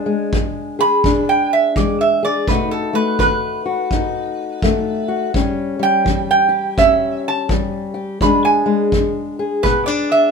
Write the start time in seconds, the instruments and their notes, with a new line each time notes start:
Already playing: steel-string acoustic guitar E2 D4 G#4
0.06 steel-string acoustic guitar G#3
0.33 steel-string acoustic guitar E3, kick
0.79 steel-string acoustic guitar G#4, resonator guitar played with a steel bar B5
1.04 steel-string acoustic guitar B2 D4, kick
1.29 resonator guitar played with a steel bar G5
1.53 resonator guitar played with a steel bar E5
1.76 steel-string acoustic guitar E3 G#3, resonator guitar played with a steel bar D5, kick
2.01 resonator guitar played with a steel bar E5
2.23 steel-string acoustic guitar G#4, resonator guitar played with a steel bar D5
2.48 steel-string acoustic guitar B2 A3, resonator guitar played with a steel bar B4, kick
2.52 steel-string acoustic guitar D#4 F#4
2.71 resonator guitar played with a steel bar A4
2.93 steel-string acoustic guitar A3, resonator guitar played with a steel bar B4
3.19 steel-string acoustic guitar D#3, resonator guitar played with a steel bar B4, kick
3.66 steel-string acoustic guitar F#4
3.91 steel-string acoustic guitar F#2 D#4, kick
4.62 steel-string acoustic guitar D#3 A3, kick
5.08 steel-string acoustic guitar F#4
5.34 steel-string acoustic guitar A2 G3 C#4 G4, kick
5.79 steel-string acoustic guitar G3, resonator guitar played with a steel bar G5
6.04 steel-string acoustic guitar E3, kick
6.31 resonator guitar played with a steel bar G5
6.49 steel-string acoustic guitar G4
6.77 steel-string acoustic guitar E2 C#4, resonator guitar played with a steel bar E5, kick
7.28 resonator guitar played with a steel bar A5
7.49 steel-string acoustic guitar E3 G3, kick
7.94 steel-string acoustic guitar G4
8.21 steel-string acoustic guitar E2 G#3 D4 G#4, resonator guitar played with a steel bar B5, kick
8.45 resonator guitar played with a steel bar G#5
8.66 steel-string acoustic guitar G#3
8.92 steel-string acoustic guitar E3, kick
9.39 steel-string acoustic guitar G#4
9.63 steel-string acoustic guitar B2 B3, resonator guitar played with a steel bar B4, kick
9.86 steel-string acoustic guitar D4, resonator guitar played with a steel bar D5
10.12 resonator guitar played with a steel bar E5